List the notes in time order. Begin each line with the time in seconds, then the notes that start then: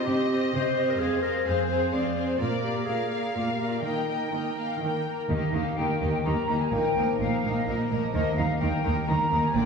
Already playing: D#5
0.05 C3 C4 G4 C5 D#5
0.30 C4 G4 C5 D#5
0.42 G4
0.53 C3 C4 G4 C5 D#5
0.76 C4 G4 C5 D#5
0.90 A#4
0.98 F2 C4 G#4 C5 F5
1.02 G#4
1.22 C4 G#4 A#4 C5 F5
1.45 F2 C4 G#4 C5 F5
1.68 C4 G#4 C5 F5
1.82 C5
1.91 F2 C4 G#4 C5 D5 F5
2.16 C4 G#4 C5 F5
2.27 C5
2.38 A#2 A#3 F4 A#4 D5 F5
2.62 A#3 G4 A#4 D5 F5
2.85 A#2 A#3 G#4 D5 F5
2.89 A#4
3.12 A#3 A#4 D5 F5
3.24 G#4
3.35 A#2 A#3 F4 A#4 D5 F5
3.53 G4
3.60 A#3 A#4 D5 F5
3.67 F4
3.83 D#3 A#3 D#4 A#4 D#5 G5
4.07 A#3 A#4 D#5 G5
4.32 D#3 A#3 A#4 D#5
4.57 A#3 A#4 F5
4.80 D#3 A#3 A#4 G5
5.08 A#3 A#4
5.19 G5
5.28 D#2 D#3 A#3 D#4 G4 D#5
5.46 A#3
5.52 D#2 D#3 A#3 D#4 G4 F5
5.61 D#4
5.76 D#2 D#3 A#3 D#4 G4 A#4 G5
5.92 D#4
5.99 D#2 D#3 A#3 D#4 G4
6.08 D#5
6.13 G5
6.23 D#2 D#3 A#3 D#4 G4 A#4 A#5
6.40 D#4
6.47 D#2 D#3 A#3 D#4 G4
6.55 A#3
6.60 G#5
6.70 A#1 A#2 D#3 A#3 D#4 A#4 G5
6.87 F3
6.96 A#1 A#2 A#3 D#4 A#4
7.02 A#3
7.18 A#1 A#2 A#3 D#4 A#4 F5
7.34 A#4
7.43 A#1 A#2 A#3 D#4 A#4
7.49 D#4
7.56 D#5
7.65 A#1 A#2 A#3 D#4 A#4 D#5
7.81 A#3
7.88 A#1 A#2 A#3 D#4 A#4
7.97 F3
8.12 D#2 D#3 A#3 D#4 A#4 D#5
8.28 A#3
8.36 D#2 D#3 A#3 D#4 A#4 F5
8.45 D#4
8.58 D#2 D#3 A#3 D#4 A#4 G5
8.75 D#4
8.83 D#2 D#3 A#3 D#4 A#4
8.91 D#5 G5
9.05 D#2 D#3 A#3 D#4 A#4 A#5
9.22 D#4
9.29 D#2 D#3 A#3 D#4 A#4
9.37 A#3
9.43 G#5
9.54 A#1 A#2 D3 A#3 F4 D5 G5